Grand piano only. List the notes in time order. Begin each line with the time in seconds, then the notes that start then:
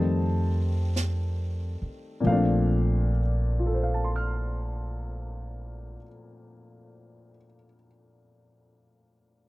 Already playing: D#3 G3 A3 C4 C5 D#5 A5
2.20 A#2 F3
2.26 A3 C4 F5
2.32 D4
3.59 F4
3.66 A4
3.74 C5
3.83 F5
3.94 A5
4.04 C6
4.16 F6